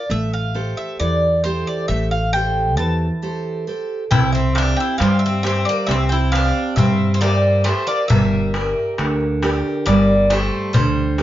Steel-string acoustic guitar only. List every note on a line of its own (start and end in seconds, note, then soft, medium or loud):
0.10 0.97 A3 medium
0.55 1.26 G4 soft
0.55 1.26 A4 soft
0.55 1.27 C5 soft
1.00 1.87 E3 medium
1.45 2.16 G4 medium
1.45 2.17 A4 soft
1.45 2.17 C5 soft
1.90 2.76 A3 medium
2.35 3.06 G4 soft
2.35 3.06 A4 soft
2.35 3.06 C5 soft
2.79 3.65 E3 medium
3.22 3.66 G4 soft
3.22 3.67 A4 soft
3.22 3.67 C5 soft
3.67 4.03 G4 soft
3.67 4.03 A4 soft
3.67 4.04 C5 soft
4.12 4.98 C4 medium
4.55 5.27 G4 soft
4.55 5.27 C5 soft
4.55 5.27 E5 medium
5.00 5.86 G3 medium
5.45 6.16 G4 medium
5.45 6.16 C5 medium
5.45 6.16 E5 soft
5.89 6.75 C4 medium
6.33 7.04 G4 medium
6.33 7.04 C5 soft
6.33 7.04 G5 medium
6.78 7.63 G3 medium
7.23 7.66 G4 soft
7.23 7.67 C5 soft
7.23 7.67 E5 soft
7.67 8.02 G4 soft
7.67 8.02 C5 soft
7.67 8.03 E5 soft
8.10 8.54 G3 medium
8.55 9.25 G4 medium
8.55 9.25 A#4 soft
8.55 9.26 D5 soft
8.99 9.84 D3 medium
9.43 10.13 G4 medium
9.43 10.13 A#4 soft
9.43 10.14 D5 medium
9.88 10.72 G3 medium
10.33 11.02 G4 soft
10.33 11.02 D5 medium
10.76 11.23 D3 medium
11.19 11.23 G4 soft
11.19 11.23 A#4 soft